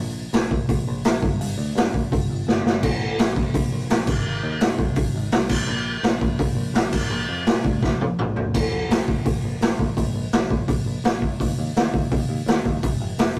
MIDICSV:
0, 0, Header, 1, 3, 480
1, 0, Start_track
1, 0, Tempo, 357356
1, 1882, Time_signature, 4, 2, 24, 8
1, 17991, End_track
2, 0, Start_track
2, 0, Title_t, "Picked electric bass"
2, 0, Program_c, 0, 34
2, 0, Note_on_c, 0, 34, 104
2, 348, Note_off_c, 0, 34, 0
2, 444, Note_on_c, 0, 34, 104
2, 634, Note_off_c, 0, 34, 0
2, 686, Note_on_c, 0, 34, 93
2, 875, Note_off_c, 0, 34, 0
2, 922, Note_on_c, 0, 34, 98
2, 1113, Note_off_c, 0, 34, 0
2, 1176, Note_on_c, 0, 34, 97
2, 1361, Note_off_c, 0, 34, 0
2, 1422, Note_on_c, 0, 34, 96
2, 1605, Note_off_c, 0, 34, 0
2, 1642, Note_on_c, 0, 31, 98
2, 1833, Note_off_c, 0, 31, 0
2, 1876, Note_on_c, 0, 31, 103
2, 2069, Note_off_c, 0, 31, 0
2, 2118, Note_on_c, 0, 38, 86
2, 2310, Note_off_c, 0, 38, 0
2, 2358, Note_on_c, 0, 43, 97
2, 2550, Note_off_c, 0, 43, 0
2, 2602, Note_on_c, 0, 34, 96
2, 2792, Note_off_c, 0, 34, 0
2, 2845, Note_on_c, 0, 31, 92
2, 3034, Note_off_c, 0, 31, 0
2, 3080, Note_on_c, 0, 31, 90
2, 3271, Note_off_c, 0, 31, 0
2, 3315, Note_on_c, 0, 31, 89
2, 3507, Note_off_c, 0, 31, 0
2, 3551, Note_on_c, 0, 31, 95
2, 3745, Note_off_c, 0, 31, 0
2, 3797, Note_on_c, 0, 34, 101
2, 4179, Note_off_c, 0, 34, 0
2, 4275, Note_on_c, 0, 34, 93
2, 4467, Note_off_c, 0, 34, 0
2, 4509, Note_on_c, 0, 34, 93
2, 4703, Note_off_c, 0, 34, 0
2, 4758, Note_on_c, 0, 34, 100
2, 4948, Note_off_c, 0, 34, 0
2, 5002, Note_on_c, 0, 34, 89
2, 5191, Note_off_c, 0, 34, 0
2, 5240, Note_on_c, 0, 34, 83
2, 5430, Note_off_c, 0, 34, 0
2, 5465, Note_on_c, 0, 32, 101
2, 5660, Note_off_c, 0, 32, 0
2, 5730, Note_on_c, 0, 32, 96
2, 5915, Note_off_c, 0, 32, 0
2, 5955, Note_on_c, 0, 39, 86
2, 6146, Note_off_c, 0, 39, 0
2, 6201, Note_on_c, 0, 44, 101
2, 6390, Note_off_c, 0, 44, 0
2, 6430, Note_on_c, 0, 36, 96
2, 6623, Note_off_c, 0, 36, 0
2, 6663, Note_on_c, 0, 32, 91
2, 6859, Note_off_c, 0, 32, 0
2, 6910, Note_on_c, 0, 32, 87
2, 7102, Note_off_c, 0, 32, 0
2, 7153, Note_on_c, 0, 36, 92
2, 7344, Note_off_c, 0, 36, 0
2, 7382, Note_on_c, 0, 34, 104
2, 7578, Note_off_c, 0, 34, 0
2, 7621, Note_on_c, 0, 34, 104
2, 8007, Note_off_c, 0, 34, 0
2, 8103, Note_on_c, 0, 34, 98
2, 8297, Note_off_c, 0, 34, 0
2, 8350, Note_on_c, 0, 34, 100
2, 8541, Note_off_c, 0, 34, 0
2, 8586, Note_on_c, 0, 34, 91
2, 8779, Note_off_c, 0, 34, 0
2, 8801, Note_on_c, 0, 34, 81
2, 9003, Note_off_c, 0, 34, 0
2, 9053, Note_on_c, 0, 34, 93
2, 9251, Note_off_c, 0, 34, 0
2, 9307, Note_on_c, 0, 34, 97
2, 9499, Note_off_c, 0, 34, 0
2, 9536, Note_on_c, 0, 34, 106
2, 9733, Note_off_c, 0, 34, 0
2, 9789, Note_on_c, 0, 41, 93
2, 9980, Note_off_c, 0, 41, 0
2, 10031, Note_on_c, 0, 46, 102
2, 10221, Note_off_c, 0, 46, 0
2, 10270, Note_on_c, 0, 38, 92
2, 10460, Note_off_c, 0, 38, 0
2, 10509, Note_on_c, 0, 34, 92
2, 10700, Note_off_c, 0, 34, 0
2, 10745, Note_on_c, 0, 34, 91
2, 10938, Note_off_c, 0, 34, 0
2, 11002, Note_on_c, 0, 34, 89
2, 11187, Note_off_c, 0, 34, 0
2, 11226, Note_on_c, 0, 34, 97
2, 11469, Note_off_c, 0, 34, 0
2, 11474, Note_on_c, 0, 34, 93
2, 11624, Note_off_c, 0, 34, 0
2, 11707, Note_on_c, 0, 34, 93
2, 11859, Note_off_c, 0, 34, 0
2, 11945, Note_on_c, 0, 34, 102
2, 12097, Note_off_c, 0, 34, 0
2, 12195, Note_on_c, 0, 34, 92
2, 12345, Note_off_c, 0, 34, 0
2, 12431, Note_on_c, 0, 34, 91
2, 12582, Note_off_c, 0, 34, 0
2, 12677, Note_on_c, 0, 34, 82
2, 12826, Note_off_c, 0, 34, 0
2, 12910, Note_on_c, 0, 34, 93
2, 13061, Note_off_c, 0, 34, 0
2, 13151, Note_on_c, 0, 34, 108
2, 13302, Note_off_c, 0, 34, 0
2, 13390, Note_on_c, 0, 34, 113
2, 13541, Note_off_c, 0, 34, 0
2, 13623, Note_on_c, 0, 34, 89
2, 13777, Note_off_c, 0, 34, 0
2, 13878, Note_on_c, 0, 34, 95
2, 14027, Note_off_c, 0, 34, 0
2, 14107, Note_on_c, 0, 34, 98
2, 14259, Note_off_c, 0, 34, 0
2, 14345, Note_on_c, 0, 34, 95
2, 14498, Note_off_c, 0, 34, 0
2, 14589, Note_on_c, 0, 34, 85
2, 14741, Note_off_c, 0, 34, 0
2, 14829, Note_on_c, 0, 34, 88
2, 15132, Note_off_c, 0, 34, 0
2, 15319, Note_on_c, 0, 39, 97
2, 15468, Note_off_c, 0, 39, 0
2, 15563, Note_on_c, 0, 39, 95
2, 15711, Note_off_c, 0, 39, 0
2, 15803, Note_on_c, 0, 39, 100
2, 15952, Note_off_c, 0, 39, 0
2, 16036, Note_on_c, 0, 39, 94
2, 16187, Note_off_c, 0, 39, 0
2, 16272, Note_on_c, 0, 39, 94
2, 16424, Note_off_c, 0, 39, 0
2, 16508, Note_on_c, 0, 39, 82
2, 16662, Note_off_c, 0, 39, 0
2, 16741, Note_on_c, 0, 39, 94
2, 16898, Note_off_c, 0, 39, 0
2, 17002, Note_on_c, 0, 39, 100
2, 17152, Note_off_c, 0, 39, 0
2, 17228, Note_on_c, 0, 29, 97
2, 17383, Note_off_c, 0, 29, 0
2, 17467, Note_on_c, 0, 29, 98
2, 17622, Note_off_c, 0, 29, 0
2, 17705, Note_on_c, 0, 29, 98
2, 17861, Note_off_c, 0, 29, 0
2, 17991, End_track
3, 0, Start_track
3, 0, Title_t, "Drums"
3, 443, Note_on_c, 9, 46, 68
3, 455, Note_on_c, 9, 38, 106
3, 577, Note_off_c, 9, 46, 0
3, 589, Note_off_c, 9, 38, 0
3, 685, Note_on_c, 9, 36, 102
3, 819, Note_off_c, 9, 36, 0
3, 925, Note_on_c, 9, 46, 64
3, 927, Note_on_c, 9, 36, 119
3, 1059, Note_off_c, 9, 46, 0
3, 1061, Note_off_c, 9, 36, 0
3, 1400, Note_on_c, 9, 46, 65
3, 1412, Note_on_c, 9, 38, 127
3, 1535, Note_off_c, 9, 46, 0
3, 1547, Note_off_c, 9, 38, 0
3, 1646, Note_on_c, 9, 36, 101
3, 1780, Note_off_c, 9, 36, 0
3, 1891, Note_on_c, 9, 46, 65
3, 2025, Note_off_c, 9, 46, 0
3, 2378, Note_on_c, 9, 46, 67
3, 2390, Note_on_c, 9, 38, 123
3, 2512, Note_off_c, 9, 46, 0
3, 2524, Note_off_c, 9, 38, 0
3, 2608, Note_on_c, 9, 36, 103
3, 2743, Note_off_c, 9, 36, 0
3, 2849, Note_on_c, 9, 36, 122
3, 2855, Note_on_c, 9, 46, 61
3, 2983, Note_off_c, 9, 36, 0
3, 2989, Note_off_c, 9, 46, 0
3, 3336, Note_on_c, 9, 38, 75
3, 3471, Note_off_c, 9, 38, 0
3, 3578, Note_on_c, 9, 38, 99
3, 3713, Note_off_c, 9, 38, 0
3, 3801, Note_on_c, 9, 36, 108
3, 3801, Note_on_c, 9, 49, 94
3, 3935, Note_off_c, 9, 49, 0
3, 3936, Note_off_c, 9, 36, 0
3, 4279, Note_on_c, 9, 46, 68
3, 4291, Note_on_c, 9, 38, 122
3, 4413, Note_off_c, 9, 46, 0
3, 4425, Note_off_c, 9, 38, 0
3, 4518, Note_on_c, 9, 36, 104
3, 4652, Note_off_c, 9, 36, 0
3, 4758, Note_on_c, 9, 36, 120
3, 4760, Note_on_c, 9, 46, 69
3, 4893, Note_off_c, 9, 36, 0
3, 4894, Note_off_c, 9, 46, 0
3, 5237, Note_on_c, 9, 46, 68
3, 5249, Note_on_c, 9, 38, 122
3, 5371, Note_off_c, 9, 46, 0
3, 5383, Note_off_c, 9, 38, 0
3, 5465, Note_on_c, 9, 57, 96
3, 5473, Note_on_c, 9, 36, 113
3, 5600, Note_off_c, 9, 57, 0
3, 5607, Note_off_c, 9, 36, 0
3, 6183, Note_on_c, 9, 46, 61
3, 6196, Note_on_c, 9, 38, 121
3, 6318, Note_off_c, 9, 46, 0
3, 6330, Note_off_c, 9, 38, 0
3, 6429, Note_on_c, 9, 36, 107
3, 6563, Note_off_c, 9, 36, 0
3, 6655, Note_on_c, 9, 46, 67
3, 6668, Note_on_c, 9, 36, 120
3, 6790, Note_off_c, 9, 46, 0
3, 6802, Note_off_c, 9, 36, 0
3, 7140, Note_on_c, 9, 46, 71
3, 7152, Note_on_c, 9, 38, 121
3, 7274, Note_off_c, 9, 46, 0
3, 7286, Note_off_c, 9, 38, 0
3, 7377, Note_on_c, 9, 57, 107
3, 7386, Note_on_c, 9, 36, 101
3, 7512, Note_off_c, 9, 57, 0
3, 7520, Note_off_c, 9, 36, 0
3, 8104, Note_on_c, 9, 46, 74
3, 8116, Note_on_c, 9, 38, 110
3, 8238, Note_off_c, 9, 46, 0
3, 8250, Note_off_c, 9, 38, 0
3, 8346, Note_on_c, 9, 36, 110
3, 8480, Note_off_c, 9, 36, 0
3, 8585, Note_on_c, 9, 36, 123
3, 8585, Note_on_c, 9, 46, 71
3, 8719, Note_off_c, 9, 46, 0
3, 8720, Note_off_c, 9, 36, 0
3, 9062, Note_on_c, 9, 46, 78
3, 9074, Note_on_c, 9, 38, 127
3, 9196, Note_off_c, 9, 46, 0
3, 9209, Note_off_c, 9, 38, 0
3, 9302, Note_on_c, 9, 57, 108
3, 9306, Note_on_c, 9, 36, 102
3, 9436, Note_off_c, 9, 57, 0
3, 9440, Note_off_c, 9, 36, 0
3, 10024, Note_on_c, 9, 46, 67
3, 10036, Note_on_c, 9, 38, 106
3, 10158, Note_off_c, 9, 46, 0
3, 10170, Note_off_c, 9, 38, 0
3, 10270, Note_on_c, 9, 36, 105
3, 10404, Note_off_c, 9, 36, 0
3, 10512, Note_on_c, 9, 36, 112
3, 10522, Note_on_c, 9, 38, 69
3, 10646, Note_off_c, 9, 36, 0
3, 10656, Note_off_c, 9, 38, 0
3, 10759, Note_on_c, 9, 48, 78
3, 10893, Note_off_c, 9, 48, 0
3, 10998, Note_on_c, 9, 45, 105
3, 11133, Note_off_c, 9, 45, 0
3, 11233, Note_on_c, 9, 43, 90
3, 11367, Note_off_c, 9, 43, 0
3, 11476, Note_on_c, 9, 36, 112
3, 11477, Note_on_c, 9, 49, 108
3, 11611, Note_off_c, 9, 36, 0
3, 11612, Note_off_c, 9, 49, 0
3, 11960, Note_on_c, 9, 46, 67
3, 11972, Note_on_c, 9, 38, 116
3, 12095, Note_off_c, 9, 46, 0
3, 12107, Note_off_c, 9, 38, 0
3, 12196, Note_on_c, 9, 36, 97
3, 12331, Note_off_c, 9, 36, 0
3, 12430, Note_on_c, 9, 46, 68
3, 12435, Note_on_c, 9, 36, 121
3, 12564, Note_off_c, 9, 46, 0
3, 12569, Note_off_c, 9, 36, 0
3, 12916, Note_on_c, 9, 46, 63
3, 12928, Note_on_c, 9, 38, 118
3, 13050, Note_off_c, 9, 46, 0
3, 13062, Note_off_c, 9, 38, 0
3, 13153, Note_on_c, 9, 36, 86
3, 13288, Note_off_c, 9, 36, 0
3, 13391, Note_on_c, 9, 36, 102
3, 13392, Note_on_c, 9, 46, 60
3, 13525, Note_off_c, 9, 36, 0
3, 13527, Note_off_c, 9, 46, 0
3, 13866, Note_on_c, 9, 46, 60
3, 13878, Note_on_c, 9, 38, 120
3, 14001, Note_off_c, 9, 46, 0
3, 14013, Note_off_c, 9, 38, 0
3, 14110, Note_on_c, 9, 36, 108
3, 14244, Note_off_c, 9, 36, 0
3, 14348, Note_on_c, 9, 36, 127
3, 14348, Note_on_c, 9, 46, 66
3, 14483, Note_off_c, 9, 36, 0
3, 14483, Note_off_c, 9, 46, 0
3, 14833, Note_on_c, 9, 46, 71
3, 14845, Note_on_c, 9, 38, 127
3, 14967, Note_off_c, 9, 46, 0
3, 14979, Note_off_c, 9, 38, 0
3, 15073, Note_on_c, 9, 36, 84
3, 15207, Note_off_c, 9, 36, 0
3, 15313, Note_on_c, 9, 36, 103
3, 15318, Note_on_c, 9, 46, 69
3, 15447, Note_off_c, 9, 36, 0
3, 15452, Note_off_c, 9, 46, 0
3, 15798, Note_on_c, 9, 46, 72
3, 15810, Note_on_c, 9, 38, 123
3, 15932, Note_off_c, 9, 46, 0
3, 15944, Note_off_c, 9, 38, 0
3, 16035, Note_on_c, 9, 36, 101
3, 16169, Note_off_c, 9, 36, 0
3, 16276, Note_on_c, 9, 36, 127
3, 16276, Note_on_c, 9, 46, 70
3, 16410, Note_off_c, 9, 36, 0
3, 16410, Note_off_c, 9, 46, 0
3, 16758, Note_on_c, 9, 46, 66
3, 16770, Note_on_c, 9, 38, 123
3, 16893, Note_off_c, 9, 46, 0
3, 16905, Note_off_c, 9, 38, 0
3, 16998, Note_on_c, 9, 36, 75
3, 17132, Note_off_c, 9, 36, 0
3, 17232, Note_on_c, 9, 46, 67
3, 17237, Note_on_c, 9, 36, 114
3, 17366, Note_off_c, 9, 46, 0
3, 17371, Note_off_c, 9, 36, 0
3, 17708, Note_on_c, 9, 46, 68
3, 17720, Note_on_c, 9, 38, 111
3, 17843, Note_off_c, 9, 46, 0
3, 17855, Note_off_c, 9, 38, 0
3, 17991, End_track
0, 0, End_of_file